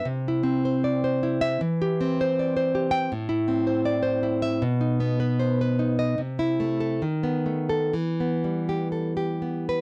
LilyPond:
\new Staff \with { instrumentName = "Nylon-string guitar" } { \time 2/4 \key e \minor \tempo 4 = 77 << { r4. r16 e''16 | r4. r16 g''16 | r4. r16 e''16 | r4. r16 dis''16 |
r8. a'16 r8. a'16 | r4. r16 b'16 | } \\ { c16 e'16 c'16 c''16 d''16 c''16 e'8 | e16 g'16 c'16 c''16 d''16 c''16 g'8 | a,16 e'16 c'16 c''16 d''16 c''16 e'8 | b,16 dis'16 b16 b'16 c''16 b'16 dis'8 |
c16 e'16 a8 dis16 b16 a8 | e16 b16 g16 g'16 a'16 g'16 b8 | } >> }